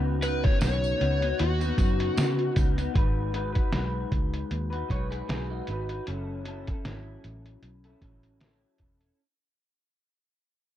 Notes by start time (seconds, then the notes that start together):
Already playing: C#2 C#3 B3 D#4 F#4
0.22 C#3 B3 D#4 F#4 B4, closed hi-hat, tambourine
0.42 C#3 B3 D#4 F#4 C#5, kick, snare, closed hi-hat
0.61 B1 C#5, snare, closed hi-hat, tambourine
0.84 tambourine
0.98 C#2 C#3 B3 D#4 F#4, closed hi-hat
1.20 D#4 F#4, closed hi-hat
1.24 B3
1.39 D#2 F#4, closed hi-hat
1.60 D#4 F#4, closed hi-hat, tambourine
1.64 B3
1.76 F#2 C#3 B3 D#4 F#4, kick, closed hi-hat, tambourine
2.00 closed hi-hat
2.16 C#3 B3 D#4 F#4, snare, closed hi-hat, tambourine
2.39 closed hi-hat
2.55 C#2 C#3 B3 D#4 F#4, kick, closed hi-hat, tambourine
2.76 B3 D#4 F#4, closed hi-hat, tambourine
2.94 G#1 G#3 D#4 F#4 B4, kick, closed hi-hat
3.32 G#3 D#4 F#4 B4, closed hi-hat
3.53 F#4 B4, kick, closed hi-hat
3.57 D#4
3.72 B1 G#3 D#4 F#4 B4, snare, closed hi-hat
4.12 C#2, kick, closed hi-hat
4.34 closed hi-hat
4.51 D#2, closed hi-hat
4.70 F#4 B4, closed hi-hat
4.74 D#4
4.88 B1 G#3 D#4 F#4 C#5, kick, closed hi-hat
4.93 B4
5.11 G#4 B4, closed hi-hat
5.28 B1 G#3 D#4 F#4 G#4 B4, snare, closed hi-hat
5.50 D#4 F#4
5.67 G#1 G#3 D#4 F#4, closed hi-hat
5.71 B4
5.89 F#4 B4, closed hi-hat
5.93 D#4
6.06 F#1 F#3 C#4 E4 A4, closed hi-hat
6.44 F#3 C#4 E4, closed hi-hat
6.48 A4
6.67 E4 A4, kick, closed hi-hat
6.72 C#4
6.85 G#1 F#3 C#4 E4 A4, snare, closed hi-hat
7.24 A1, closed hi-hat
7.46 closed hi-hat
7.62 B1, closed hi-hat
7.84 E4 A4, closed hi-hat
7.89 C#4
8.01 A1 F#3 C#4 E4 A4, kick, closed hi-hat
8.23 closed hi-hat
8.40 F#3 C#4 E4 A4, snare, closed hi-hat
8.78 E1 F#3 C#4 E4 A4, kick, closed hi-hat
9.00 C#4 E4 A4, closed hi-hat